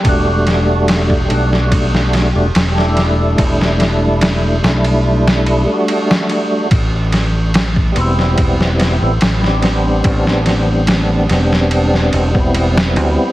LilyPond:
<<
  \new Staff \with { instrumentName = "Tonewheel organ" } { \time 4/4 \key e \minor \tempo 4 = 72 <g a d' fis'>4. <g a d' fis'>4~ <g a d' fis'>16 <g a d' fis'>16 r16 <g a d' e'>8.~ | <g a d' e'>4. <g a d' e'>4~ <g a d' e'>16 <g a d' fis'>4~ <g a d' fis'>16 | r4. <g b c' e'>4~ <g b c' e'>16 <g b c' e'>16 r16 <g b c' d'>8.~ | <g b c' d'>4. <g b c' d'>4~ <g b c' d'>16 <g b c' e'>4~ <g b c' e'>16 | }
  \new Staff \with { instrumentName = "Fingered electric bass" } { \clef bass \time 4/4 \key e \minor e,,4. b,,4~ b,,16 e,,16 e,,4 | e,,4. b,,4~ b,,16 r4 r16 | a,,4. e,,4~ e,,16 a,,16 a,,4 | a,,4. e,,4 e,,4 d,16 r16 | }
  \new DrumStaff \with { instrumentName = "Drums" } \drummode { \time 4/4 <bd cymr>8 <cymr sn>8 <cymr sn>16 bd16 cymr16 sn16 <bd cymr>16 sn16 <cymr sn>8 <cymr sn>16 sn16 <cymr sn>8 | <bd cymr>16 sn16 <cymr sn>8 <cymr sn>8 sn16 cymr16 r16 sn16 cymr8 cymr16 sn16 cymr8 | <bd cymr>8 <cymr sn>8 <cymr sn>16 bd16 cymr16 sn16 <bd cymr>16 sn16 <cymr sn>8 <cymr sn>16 sn16 <cymr sn>8 | <bd cymr>16 sn16 <cymr sn>8 <cymr sn>8 <cymr sn>16 sn16 cymr16 sn16 cymr16 bd16 cymr16 sn16 cymr8 | }
>>